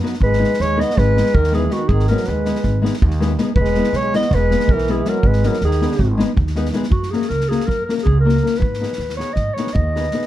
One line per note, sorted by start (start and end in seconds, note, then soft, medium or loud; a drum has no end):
0.02 0.13 F#3 medium
0.02 0.14 B3 medium
0.02 0.14 D#4 medium
0.02 0.14 F#4 medium
0.02 0.14 B4 medium
0.02 snare soft
0.14 snare soft
0.20 0.43 G#1 medium
0.20 0.61 G#3 loud
0.20 0.63 B4 loud
0.20 kick medium
0.33 snare soft
0.39 0.51 G#3 medium
0.39 0.51 B3 medium
0.39 0.51 D#4 medium
0.39 0.51 G#4 medium
0.39 0.52 B4 medium
0.44 snare soft
0.54 snare soft
0.60 0.82 D#2 medium
0.60 0.84 G#3 medium
0.60 0.81 C#5 loud
0.60 snare soft
0.76 0.88 G#3 medium
0.76 0.88 B3 medium
0.76 0.89 D#4 medium
0.76 0.89 G#4 medium
0.76 0.89 B4 medium
0.76 0.99 D#5 loud
0.80 0.98 B3 medium
0.80 snare soft
0.90 snare soft
0.97 1.20 G#1 loud
0.97 1.37 G#3 loud
0.97 1.36 B4 loud
0.97 kick medium
0.97 snare soft
1.16 1.27 G#3 medium
1.16 1.27 B3 medium
1.16 1.28 D#4 medium
1.16 1.28 G#4 medium
1.16 1.28 B4 medium
1.16 snare soft
1.26 snare soft
1.34 1.67 D#2 loud
1.34 1.58 D#3 medium
1.34 1.56 A#4 loud
1.34 kick medium
1.44 snare soft
1.52 1.63 G#3 medium
1.52 1.64 B3 medium
1.52 1.64 D#4 medium
1.52 1.64 G#4 medium
1.52 1.74 G#4 medium
1.52 1.65 B4 medium
1.52 snare soft
1.56 1.74 E3 medium
1.70 1.91 D#3 medium
1.70 1.81 G#3 medium
1.70 1.81 B3 medium
1.70 1.82 D#4 medium
1.70 1.90 F#4 medium
1.70 1.82 G#4 soft
1.70 1.82 B4 medium
1.70 snare soft
1.88 2.12 G#1 loud
1.88 2.09 D#3 medium
1.88 2.07 G#4 loud
1.88 kick loud
1.99 snare soft
2.07 2.20 G#3 medium
2.07 2.20 B3 medium
2.07 2.21 D#4 soft
2.07 2.21 G#4 medium
2.07 2.27 A#4 medium
2.07 snare soft
2.12 2.31 F#3 medium
2.12 2.21 B4 medium
2.17 snare soft
2.24 2.50 D#2 medium
2.24 2.84 B4 loud
2.24 snare soft
2.30 2.86 G#3 medium
2.45 2.57 G#3 medium
2.45 2.57 B3 medium
2.45 2.57 D#4 medium
2.45 2.57 G#4 medium
2.45 2.58 B4 medium
2.45 snare soft
2.55 snare soft
2.63 2.87 G#1 medium
2.63 kick medium
2.63 snare soft
2.82 2.94 G#3 medium
2.82 2.94 B3 medium
2.82 2.95 D#4 medium
2.82 2.95 G#4 medium
2.82 2.95 B4 medium
2.82 snare soft
2.93 snare soft
3.02 3.35 D#2 loud
3.02 kick loud
3.11 snare soft
3.20 3.32 G#3 medium
3.20 3.32 B3 medium
3.20 3.32 D#4 medium
3.20 3.32 G#4 medium
3.20 3.32 B4 medium
3.20 snare soft
3.38 3.50 G#3 medium
3.38 3.49 B3 medium
3.38 3.50 D#4 medium
3.38 3.50 G#4 medium
3.38 3.50 B4 medium
3.38 snare soft
3.56 3.79 E1 loud
3.56 3.98 B4 loud
3.56 kick loud
3.61 4.00 G#3 loud
3.61 snare soft
3.75 3.87 G#3 medium
3.75 3.88 B3 medium
3.75 3.88 E4 medium
3.75 3.88 G#4 medium
3.75 3.88 B4 medium
3.75 snare soft
3.84 snare soft
3.93 4.16 B1 medium
3.93 4.15 C#5 loud
3.93 snare soft
4.00 4.17 G#3 medium
4.13 4.25 G#3 medium
4.13 4.25 B3 medium
4.13 4.25 E4 medium
4.13 4.26 G#4 medium
4.13 4.25 B4 medium
4.13 4.36 D#5 loud
4.13 snare soft
4.19 4.38 B3 medium
4.19 snare soft
4.31 4.54 E1 loud
4.31 4.73 B4 loud
4.31 kick medium
4.31 snare soft
4.36 4.75 G#3 loud
4.51 4.63 G#3 medium
4.51 4.63 B3 medium
4.51 4.63 E4 medium
4.51 4.64 G#4 medium
4.51 4.64 B4 medium
4.51 snare soft
4.60 snare soft
4.68 5.01 B1 loud
4.68 4.93 A#4 loud
4.68 kick loud
4.74 4.92 E3 medium
4.78 snare soft
4.87 5.00 G#3 medium
4.87 5.00 B3 medium
4.87 5.01 E4 medium
4.87 5.00 G#4 medium
4.87 5.10 G#4 medium
4.87 5.00 B4 medium
4.87 snare soft
4.92 5.10 E3 medium
5.05 5.29 F#3 medium
5.05 5.17 G#3 medium
5.05 5.17 B3 medium
5.05 5.17 E4 medium
5.05 5.18 G#4 medium
5.05 5.28 A#4 medium
5.05 5.18 B4 medium
5.05 snare soft
5.23 5.46 G#1 loud
5.23 5.48 B4 medium
5.23 kick medium
5.27 5.49 G#3 loud
5.33 snare soft
5.43 5.55 G#3 medium
5.43 5.55 B3 medium
5.43 5.56 D#4 medium
5.43 5.56 G#4 medium
5.43 5.63 A#4 medium
5.43 5.56 B4 medium
5.43 snare soft
5.47 5.64 F#3 medium
5.53 snare soft
5.61 5.84 D#2 medium
5.61 6.17 D#3 medium
5.61 6.17 G#4 medium
5.61 snare soft
5.71 snare soft
5.81 5.92 G#3 medium
5.81 5.93 B3 medium
5.81 5.93 D#4 medium
5.81 5.93 G#4 medium
5.81 5.94 B4 medium
5.81 snare soft
5.92 snare soft
5.99 6.22 G#1 loud
5.99 kick medium
5.99 snare soft
6.18 6.30 G#3 medium
6.18 6.31 B3 medium
6.18 6.30 D#4 medium
6.18 6.31 G#4 medium
6.18 6.31 B4 medium
6.18 snare soft
6.37 6.69 D#2 loud
6.37 kick medium
6.47 snare soft
6.56 6.67 G#3 medium
6.56 6.67 B3 medium
6.56 6.67 D#4 medium
6.56 6.68 G#4 medium
6.56 6.68 B4 medium
6.56 snare soft
6.65 snare soft
6.73 6.85 G#3 medium
6.73 6.85 B3 medium
6.73 6.85 D#4 medium
6.73 6.85 G#4 medium
6.73 6.86 B4 medium
6.73 snare soft
6.83 snare soft
6.90 7.14 F#2 medium
6.90 7.12 F#4 medium
6.90 kick loud
7.03 snare soft
7.10 7.24 A#3 medium
7.10 7.24 C#4 medium
7.10 7.24 F#4 medium
7.10 7.30 G#4 medium
7.10 snare soft
7.15 7.25 A#4 medium
7.22 snare soft
7.29 7.53 C#2 medium
7.29 7.50 A#4 loud
7.29 snare soft
7.41 snare soft
7.49 7.61 A#3 medium
7.49 7.61 C#4 medium
7.49 7.62 F#4 medium
7.49 7.68 G#4 medium
7.49 7.62 A#4 medium
7.49 snare soft
7.60 snare soft
7.66 7.80 F#2 medium
7.66 7.85 A#4 loud
7.66 kick medium
7.66 snare soft
7.85 8.00 A#3 medium
7.85 8.00 C#4 medium
7.85 7.94 A#4 medium
7.85 snare soft
7.90 8.00 F#4 medium
7.90 8.01 A#4 medium
7.98 snare soft
8.02 8.38 C#2 loud
8.02 8.19 G#4 medium
8.07 kick medium
8.20 8.59 A#4 medium
8.25 8.36 A#3 medium
8.25 8.36 C#4 medium
8.25 8.36 F#4 medium
8.25 8.37 A#4 medium
8.25 snare soft
8.37 snare soft
8.42 8.54 A#3 medium
8.42 8.54 C#4 medium
8.42 8.54 F#4 medium
8.42 8.54 A#4 medium
8.42 snare soft
8.55 9.16 B4 medium
8.55 snare soft
8.60 8.83 G#2 medium
8.60 kick medium
8.74 snare soft
8.81 8.92 B3 medium
8.81 8.92 D#4 medium
8.81 8.93 G#4 medium
8.81 8.93 B4 medium
8.81 snare soft
8.93 snare soft
8.98 9.21 D#2 medium
8.98 snare soft
9.09 snare soft
9.17 9.29 B3 medium
9.17 9.30 D#4 medium
9.17 9.30 G#4 medium
9.17 9.30 B4 medium
9.17 9.35 C#5 medium
9.17 snare soft
9.33 9.48 G#2 medium
9.33 9.55 D#5 loud
9.33 kick medium
9.33 snare soft
9.54 9.75 C#5 medium
9.54 snare soft
9.58 9.68 B3 medium
9.58 9.68 D#4 medium
9.58 9.69 G#4 medium
9.58 9.69 B4 medium
9.67 snare soft
9.73 10.07 D#2 loud
9.73 10.27 D#5 medium
9.73 kick loud
9.95 10.05 B3 medium
9.95 10.06 D#4 medium
9.95 10.06 G#4 medium
9.95 10.06 B4 medium
9.95 snare soft
10.04 snare soft
10.11 10.23 B3 medium
10.11 10.23 D#4 medium
10.11 10.24 G#4 medium
10.11 10.24 B4 medium
10.11 snare soft
10.22 snare soft